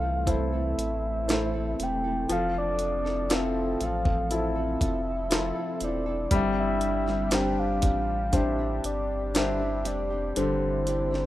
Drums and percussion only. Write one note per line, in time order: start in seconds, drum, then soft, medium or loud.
0.27 kick medium
0.27 closed hi-hat medium
0.79 closed hi-hat medium
1.29 snare loud
1.29 closed hi-hat medium
1.80 closed hi-hat medium
2.29 closed hi-hat medium
2.79 closed hi-hat medium
3.06 snare soft
3.30 snare loud
3.30 closed hi-hat medium
3.81 closed hi-hat medium
4.05 kick medium
4.31 closed hi-hat medium
4.81 kick medium
4.81 closed hi-hat medium
5.31 snare loud
5.31 closed hi-hat medium
5.80 closed hi-hat medium
6.31 kick medium
6.31 closed hi-hat medium
6.81 closed hi-hat medium
7.08 snare soft
7.31 snare medium
7.31 closed hi-hat medium
7.82 kick medium
7.82 closed hi-hat medium
8.33 kick medium
8.33 closed hi-hat medium
8.84 closed hi-hat medium
9.35 snare loud
9.35 closed hi-hat medium
9.85 closed hi-hat medium
10.36 closed hi-hat medium
10.87 closed hi-hat medium
11.14 snare soft